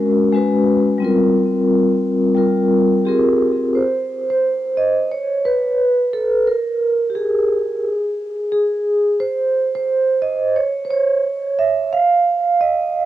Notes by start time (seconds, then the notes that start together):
Already playing: G#3 C#4 F#4 A#4
0.32 G#3 C#4 F#4 B4
0.98 G3 C4
1.03 F4 A#4
2.35 G3 C4 F4 A#4
3.05 C4 F4 G4 G#4 A#4
3.75 C5
4.30 C5
4.77 D#5
5.12 C#5
5.45 B4
6.13 A4
6.47 A#4
7.10 G4
7.15 G#4
8.52 G#4
9.20 C5
9.75 C5
10.22 D#5
10.56 C#5
10.85 C5
10.91 C#5
11.59 E5
11.93 F5
12.61 D#5